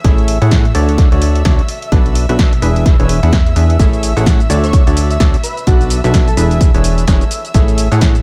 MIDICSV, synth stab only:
0, 0, Header, 1, 2, 480
1, 0, Start_track
1, 0, Key_signature, 3, "major"
1, 0, Tempo, 468750
1, 46, Time_signature, 4, 2, 24, 8
1, 8418, End_track
2, 0, Start_track
2, 0, Title_t, "Synth stab"
2, 0, Program_c, 0, 62
2, 44, Note_on_c, 0, 57, 79
2, 44, Note_on_c, 0, 64, 76
2, 44, Note_on_c, 0, 68, 71
2, 44, Note_on_c, 0, 69, 76
2, 44, Note_on_c, 0, 73, 76
2, 44, Note_on_c, 0, 76, 93
2, 392, Note_off_c, 0, 57, 0
2, 392, Note_off_c, 0, 64, 0
2, 392, Note_off_c, 0, 68, 0
2, 392, Note_off_c, 0, 69, 0
2, 392, Note_off_c, 0, 73, 0
2, 392, Note_off_c, 0, 76, 0
2, 426, Note_on_c, 0, 57, 93
2, 426, Note_on_c, 0, 64, 83
2, 426, Note_on_c, 0, 68, 87
2, 426, Note_on_c, 0, 69, 88
2, 426, Note_on_c, 0, 73, 89
2, 426, Note_on_c, 0, 78, 105
2, 672, Note_off_c, 0, 57, 0
2, 672, Note_off_c, 0, 64, 0
2, 672, Note_off_c, 0, 68, 0
2, 672, Note_off_c, 0, 69, 0
2, 672, Note_off_c, 0, 73, 0
2, 672, Note_off_c, 0, 78, 0
2, 764, Note_on_c, 0, 62, 87
2, 764, Note_on_c, 0, 66, 88
2, 764, Note_on_c, 0, 69, 91
2, 764, Note_on_c, 0, 74, 109
2, 765, Note_on_c, 0, 50, 98
2, 765, Note_on_c, 0, 73, 89
2, 1112, Note_off_c, 0, 62, 0
2, 1112, Note_off_c, 0, 66, 0
2, 1112, Note_off_c, 0, 69, 0
2, 1112, Note_off_c, 0, 74, 0
2, 1113, Note_off_c, 0, 50, 0
2, 1113, Note_off_c, 0, 73, 0
2, 1146, Note_on_c, 0, 50, 78
2, 1146, Note_on_c, 0, 62, 73
2, 1146, Note_on_c, 0, 69, 70
2, 1147, Note_on_c, 0, 66, 75
2, 1147, Note_on_c, 0, 73, 74
2, 1147, Note_on_c, 0, 74, 85
2, 1462, Note_off_c, 0, 50, 0
2, 1462, Note_off_c, 0, 62, 0
2, 1462, Note_off_c, 0, 66, 0
2, 1462, Note_off_c, 0, 69, 0
2, 1462, Note_off_c, 0, 73, 0
2, 1462, Note_off_c, 0, 74, 0
2, 1486, Note_on_c, 0, 47, 89
2, 1486, Note_on_c, 0, 62, 87
2, 1486, Note_on_c, 0, 66, 81
2, 1486, Note_on_c, 0, 69, 78
2, 1486, Note_on_c, 0, 73, 86
2, 1486, Note_on_c, 0, 74, 97
2, 1655, Note_off_c, 0, 47, 0
2, 1655, Note_off_c, 0, 62, 0
2, 1655, Note_off_c, 0, 66, 0
2, 1655, Note_off_c, 0, 69, 0
2, 1655, Note_off_c, 0, 73, 0
2, 1655, Note_off_c, 0, 74, 0
2, 1966, Note_on_c, 0, 47, 81
2, 1966, Note_on_c, 0, 62, 74
2, 1966, Note_on_c, 0, 66, 74
2, 1966, Note_on_c, 0, 69, 72
2, 1966, Note_on_c, 0, 71, 73
2, 1966, Note_on_c, 0, 74, 86
2, 2313, Note_off_c, 0, 47, 0
2, 2313, Note_off_c, 0, 62, 0
2, 2313, Note_off_c, 0, 66, 0
2, 2313, Note_off_c, 0, 69, 0
2, 2313, Note_off_c, 0, 71, 0
2, 2313, Note_off_c, 0, 74, 0
2, 2347, Note_on_c, 0, 47, 100
2, 2347, Note_on_c, 0, 62, 86
2, 2347, Note_on_c, 0, 66, 89
2, 2347, Note_on_c, 0, 69, 84
2, 2347, Note_on_c, 0, 71, 85
2, 2347, Note_on_c, 0, 76, 104
2, 2592, Note_off_c, 0, 47, 0
2, 2592, Note_off_c, 0, 62, 0
2, 2592, Note_off_c, 0, 66, 0
2, 2592, Note_off_c, 0, 69, 0
2, 2592, Note_off_c, 0, 71, 0
2, 2592, Note_off_c, 0, 76, 0
2, 2685, Note_on_c, 0, 62, 85
2, 2685, Note_on_c, 0, 64, 86
2, 2685, Note_on_c, 0, 76, 106
2, 2686, Note_on_c, 0, 52, 101
2, 2686, Note_on_c, 0, 68, 86
2, 2686, Note_on_c, 0, 71, 83
2, 3033, Note_off_c, 0, 52, 0
2, 3033, Note_off_c, 0, 62, 0
2, 3033, Note_off_c, 0, 64, 0
2, 3033, Note_off_c, 0, 68, 0
2, 3033, Note_off_c, 0, 71, 0
2, 3033, Note_off_c, 0, 76, 0
2, 3067, Note_on_c, 0, 52, 78
2, 3067, Note_on_c, 0, 62, 70
2, 3067, Note_on_c, 0, 64, 69
2, 3067, Note_on_c, 0, 68, 70
2, 3067, Note_on_c, 0, 71, 73
2, 3067, Note_on_c, 0, 73, 86
2, 3279, Note_off_c, 0, 52, 0
2, 3279, Note_off_c, 0, 62, 0
2, 3279, Note_off_c, 0, 64, 0
2, 3279, Note_off_c, 0, 68, 0
2, 3279, Note_off_c, 0, 71, 0
2, 3279, Note_off_c, 0, 73, 0
2, 3307, Note_on_c, 0, 52, 101
2, 3307, Note_on_c, 0, 62, 91
2, 3307, Note_on_c, 0, 64, 94
2, 3307, Note_on_c, 0, 68, 88
2, 3307, Note_on_c, 0, 71, 88
2, 3307, Note_on_c, 0, 78, 113
2, 3445, Note_off_c, 0, 52, 0
2, 3445, Note_off_c, 0, 62, 0
2, 3445, Note_off_c, 0, 64, 0
2, 3446, Note_off_c, 0, 68, 0
2, 3446, Note_off_c, 0, 71, 0
2, 3446, Note_off_c, 0, 78, 0
2, 3645, Note_on_c, 0, 62, 71
2, 3645, Note_on_c, 0, 64, 66
2, 3645, Note_on_c, 0, 68, 69
2, 3645, Note_on_c, 0, 71, 69
2, 3646, Note_on_c, 0, 76, 80
2, 3862, Note_off_c, 0, 62, 0
2, 3862, Note_off_c, 0, 64, 0
2, 3862, Note_off_c, 0, 68, 0
2, 3862, Note_off_c, 0, 71, 0
2, 3862, Note_off_c, 0, 76, 0
2, 3885, Note_on_c, 0, 57, 82
2, 3886, Note_on_c, 0, 64, 77
2, 3886, Note_on_c, 0, 68, 74
2, 3886, Note_on_c, 0, 69, 74
2, 3886, Note_on_c, 0, 73, 74
2, 3886, Note_on_c, 0, 76, 92
2, 4233, Note_off_c, 0, 57, 0
2, 4233, Note_off_c, 0, 64, 0
2, 4233, Note_off_c, 0, 68, 0
2, 4233, Note_off_c, 0, 69, 0
2, 4233, Note_off_c, 0, 73, 0
2, 4233, Note_off_c, 0, 76, 0
2, 4266, Note_on_c, 0, 57, 94
2, 4266, Note_on_c, 0, 64, 88
2, 4266, Note_on_c, 0, 68, 84
2, 4266, Note_on_c, 0, 69, 84
2, 4266, Note_on_c, 0, 73, 88
2, 4266, Note_on_c, 0, 78, 103
2, 4512, Note_off_c, 0, 57, 0
2, 4512, Note_off_c, 0, 64, 0
2, 4512, Note_off_c, 0, 68, 0
2, 4512, Note_off_c, 0, 69, 0
2, 4512, Note_off_c, 0, 73, 0
2, 4512, Note_off_c, 0, 78, 0
2, 4605, Note_on_c, 0, 66, 89
2, 4605, Note_on_c, 0, 69, 88
2, 4605, Note_on_c, 0, 74, 108
2, 4606, Note_on_c, 0, 50, 96
2, 4606, Note_on_c, 0, 62, 91
2, 4606, Note_on_c, 0, 73, 88
2, 4953, Note_off_c, 0, 50, 0
2, 4953, Note_off_c, 0, 62, 0
2, 4953, Note_off_c, 0, 66, 0
2, 4953, Note_off_c, 0, 69, 0
2, 4953, Note_off_c, 0, 73, 0
2, 4953, Note_off_c, 0, 74, 0
2, 4986, Note_on_c, 0, 50, 79
2, 4986, Note_on_c, 0, 73, 72
2, 4986, Note_on_c, 0, 74, 88
2, 4987, Note_on_c, 0, 62, 70
2, 4987, Note_on_c, 0, 66, 74
2, 4987, Note_on_c, 0, 69, 71
2, 5302, Note_off_c, 0, 50, 0
2, 5302, Note_off_c, 0, 62, 0
2, 5302, Note_off_c, 0, 66, 0
2, 5302, Note_off_c, 0, 69, 0
2, 5302, Note_off_c, 0, 73, 0
2, 5302, Note_off_c, 0, 74, 0
2, 5325, Note_on_c, 0, 47, 88
2, 5325, Note_on_c, 0, 62, 82
2, 5325, Note_on_c, 0, 66, 78
2, 5325, Note_on_c, 0, 69, 87
2, 5325, Note_on_c, 0, 74, 100
2, 5326, Note_on_c, 0, 73, 79
2, 5495, Note_off_c, 0, 47, 0
2, 5495, Note_off_c, 0, 62, 0
2, 5495, Note_off_c, 0, 66, 0
2, 5495, Note_off_c, 0, 69, 0
2, 5495, Note_off_c, 0, 73, 0
2, 5495, Note_off_c, 0, 74, 0
2, 5806, Note_on_c, 0, 47, 82
2, 5806, Note_on_c, 0, 62, 74
2, 5806, Note_on_c, 0, 66, 74
2, 5806, Note_on_c, 0, 69, 71
2, 5806, Note_on_c, 0, 71, 72
2, 5806, Note_on_c, 0, 74, 85
2, 6153, Note_off_c, 0, 47, 0
2, 6153, Note_off_c, 0, 62, 0
2, 6153, Note_off_c, 0, 66, 0
2, 6153, Note_off_c, 0, 69, 0
2, 6153, Note_off_c, 0, 71, 0
2, 6154, Note_off_c, 0, 74, 0
2, 6186, Note_on_c, 0, 47, 96
2, 6187, Note_on_c, 0, 62, 87
2, 6187, Note_on_c, 0, 66, 91
2, 6187, Note_on_c, 0, 69, 88
2, 6187, Note_on_c, 0, 71, 87
2, 6187, Note_on_c, 0, 76, 106
2, 6432, Note_off_c, 0, 47, 0
2, 6432, Note_off_c, 0, 62, 0
2, 6432, Note_off_c, 0, 66, 0
2, 6432, Note_off_c, 0, 69, 0
2, 6432, Note_off_c, 0, 71, 0
2, 6432, Note_off_c, 0, 76, 0
2, 6525, Note_on_c, 0, 52, 96
2, 6525, Note_on_c, 0, 62, 91
2, 6525, Note_on_c, 0, 64, 88
2, 6525, Note_on_c, 0, 68, 88
2, 6525, Note_on_c, 0, 71, 87
2, 6525, Note_on_c, 0, 76, 111
2, 6873, Note_off_c, 0, 52, 0
2, 6873, Note_off_c, 0, 62, 0
2, 6873, Note_off_c, 0, 64, 0
2, 6873, Note_off_c, 0, 68, 0
2, 6873, Note_off_c, 0, 71, 0
2, 6873, Note_off_c, 0, 76, 0
2, 6907, Note_on_c, 0, 52, 78
2, 6907, Note_on_c, 0, 62, 73
2, 6907, Note_on_c, 0, 64, 75
2, 6907, Note_on_c, 0, 68, 70
2, 6907, Note_on_c, 0, 71, 69
2, 6907, Note_on_c, 0, 73, 84
2, 7222, Note_off_c, 0, 52, 0
2, 7222, Note_off_c, 0, 62, 0
2, 7222, Note_off_c, 0, 64, 0
2, 7222, Note_off_c, 0, 68, 0
2, 7222, Note_off_c, 0, 71, 0
2, 7222, Note_off_c, 0, 73, 0
2, 7246, Note_on_c, 0, 52, 88
2, 7246, Note_on_c, 0, 62, 84
2, 7246, Note_on_c, 0, 64, 85
2, 7246, Note_on_c, 0, 68, 84
2, 7246, Note_on_c, 0, 71, 81
2, 7246, Note_on_c, 0, 73, 96
2, 7415, Note_off_c, 0, 52, 0
2, 7415, Note_off_c, 0, 62, 0
2, 7415, Note_off_c, 0, 64, 0
2, 7415, Note_off_c, 0, 68, 0
2, 7415, Note_off_c, 0, 71, 0
2, 7415, Note_off_c, 0, 73, 0
2, 7725, Note_on_c, 0, 57, 81
2, 7725, Note_on_c, 0, 64, 73
2, 7725, Note_on_c, 0, 68, 76
2, 7725, Note_on_c, 0, 69, 78
2, 7725, Note_on_c, 0, 73, 72
2, 7725, Note_on_c, 0, 76, 92
2, 8072, Note_off_c, 0, 76, 0
2, 8073, Note_off_c, 0, 57, 0
2, 8073, Note_off_c, 0, 64, 0
2, 8073, Note_off_c, 0, 68, 0
2, 8073, Note_off_c, 0, 69, 0
2, 8073, Note_off_c, 0, 73, 0
2, 8106, Note_on_c, 0, 57, 95
2, 8106, Note_on_c, 0, 64, 83
2, 8106, Note_on_c, 0, 68, 87
2, 8106, Note_on_c, 0, 69, 85
2, 8106, Note_on_c, 0, 73, 89
2, 8106, Note_on_c, 0, 78, 103
2, 8352, Note_off_c, 0, 57, 0
2, 8352, Note_off_c, 0, 64, 0
2, 8352, Note_off_c, 0, 68, 0
2, 8352, Note_off_c, 0, 69, 0
2, 8352, Note_off_c, 0, 73, 0
2, 8352, Note_off_c, 0, 78, 0
2, 8418, End_track
0, 0, End_of_file